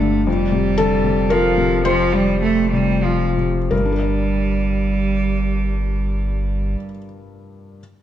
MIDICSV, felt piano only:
0, 0, Header, 1, 2, 480
1, 0, Start_track
1, 0, Key_signature, -2, "minor"
1, 0, Tempo, 522648
1, 248, Time_signature, 3, 2, 24, 8
1, 1695, Tempo, 596421
1, 2655, Tempo, 675676
1, 6199, End_track
2, 0, Start_track
2, 0, Title_t, "Felt piano"
2, 0, Program_c, 0, 0
2, 0, Control_c, 0, 64, 127
2, 0, Note_on_c, 0, 43, 77
2, 0, Note_on_c, 0, 50, 69
2, 0, Note_on_c, 0, 55, 65
2, 0, Note_on_c, 0, 57, 54
2, 0, Note_on_c, 0, 62, 78
2, 0, Note_on_c, 0, 74, 110
2, 16, Note_off_c, 0, 50, 0
2, 16, Note_on_c, 0, 50, 70
2, 154, Note_off_c, 0, 62, 0
2, 210, Note_off_c, 0, 43, 0
2, 248, Note_off_c, 0, 50, 0
2, 248, Note_on_c, 0, 41, 96
2, 265, Control_c, 0, 64, 0
2, 267, Note_off_c, 0, 57, 0
2, 268, Note_off_c, 0, 55, 0
2, 272, Note_off_c, 0, 74, 0
2, 400, Control_c, 0, 64, 127
2, 477, Note_on_c, 0, 48, 76
2, 713, Note_on_c, 0, 69, 127
2, 715, Note_on_c, 0, 50, 65
2, 856, Note_off_c, 0, 48, 0
2, 953, Note_off_c, 0, 50, 0
2, 959, Note_on_c, 0, 48, 72
2, 1161, Note_off_c, 0, 69, 0
2, 1196, Note_on_c, 0, 70, 115
2, 1206, Note_on_c, 0, 65, 85
2, 1346, Note_off_c, 0, 48, 0
2, 1447, Note_on_c, 0, 48, 76
2, 1599, Note_off_c, 0, 65, 0
2, 1658, Note_off_c, 0, 41, 0
2, 1660, Note_off_c, 0, 70, 0
2, 1698, Note_on_c, 0, 72, 127
2, 1701, Note_on_c, 0, 41, 100
2, 1712, Control_c, 0, 64, 0
2, 1832, Note_off_c, 0, 48, 0
2, 1866, Control_c, 0, 64, 127
2, 1925, Note_on_c, 0, 55, 72
2, 2159, Note_on_c, 0, 57, 71
2, 2303, Note_off_c, 0, 55, 0
2, 2402, Note_off_c, 0, 57, 0
2, 2408, Note_on_c, 0, 48, 70
2, 2658, Note_on_c, 0, 65, 71
2, 2799, Note_off_c, 0, 48, 0
2, 2865, Note_off_c, 0, 72, 0
2, 2895, Note_on_c, 0, 48, 61
2, 3039, Note_off_c, 0, 65, 0
2, 3108, Note_off_c, 0, 41, 0
2, 3129, Note_on_c, 0, 70, 94
2, 3135, Note_on_c, 0, 43, 71
2, 3136, Note_off_c, 0, 48, 0
2, 3154, Control_c, 0, 64, 0
2, 3186, Note_on_c, 0, 55, 68
2, 3236, Note_on_c, 0, 62, 67
2, 3274, Note_off_c, 0, 70, 0
2, 3285, Note_on_c, 0, 70, 73
2, 3294, Control_c, 0, 64, 127
2, 3334, Note_on_c, 0, 74, 66
2, 5301, Note_off_c, 0, 43, 0
2, 5353, Note_off_c, 0, 55, 0
2, 5402, Note_off_c, 0, 62, 0
2, 5451, Note_off_c, 0, 70, 0
2, 5500, Note_off_c, 0, 74, 0
2, 6036, Control_c, 0, 64, 0
2, 6199, End_track
0, 0, End_of_file